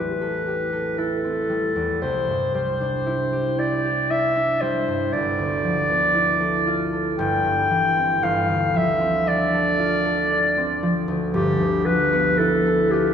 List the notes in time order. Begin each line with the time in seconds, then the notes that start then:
Already playing: A1 E2 G3 C4 E4 A4 B4
0.21 A4
0.47 G4
0.73 A4
0.98 E4 A4
1.24 C4
1.49 G3
1.76 E2
2.02 C2 C5
2.28 G2
2.54 G3 C5
2.81 D4
3.06 E4
3.33 G4
3.59 E4 D5
3.85 G4
4.11 E4 E5
4.36 D4
4.61 G3 C5
4.88 G2
5.13 G1 D5
5.38 D2
5.64 F3
5.89 B3
6.15 E4
6.40 A4
6.67 F4
6.93 A4
7.19 G1 G5
7.45 G2
7.70 E3
7.97 C4
8.23 G1 F5
8.48 D2
8.74 F3 E5
9.00 C4
9.26 D4 D5
9.54 A4
9.79 F4
10.05 A4
10.31 D4
10.57 C4
10.83 F3
11.08 D2
11.34 G1 G4
11.60 D2
11.85 F3 B4
12.13 B3
12.38 E4 A4
12.65 A4
12.91 F4 G4